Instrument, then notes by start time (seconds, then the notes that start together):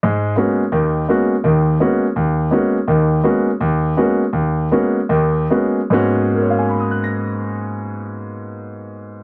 grand piano
0.03 G#2 G#3
0.36 G#3 A#3 B3 C#4 F#4
0.72 D#2 D#3
1.09 G#3 A#3 B3 C#4 F#4
1.44 D#2 D#3
1.80 G#3 A#3 B3 C#4 F#4
2.16 D#2
2.51 G#3 A#3 B3 C#4 F#4
2.88 D#2 D#3
3.24 G#3 A#3 B3 C#4 F#4
3.61 D#2
3.97 G#3 A#3 B3 C#4 F#4
4.33 D#2
4.72 G#3 A#3 B3 C#4 F#4
5.09 D#2 D#3
5.51 G#3 A#3 B3 C#4 F#4
5.90 G#2 G#3 A#3 B3 C#4 F#4
6.35 A#4
6.42 C#5
6.50 F5
6.59 G#5
6.69 B5
6.80 D#6
6.91 F#6
7.04 A#6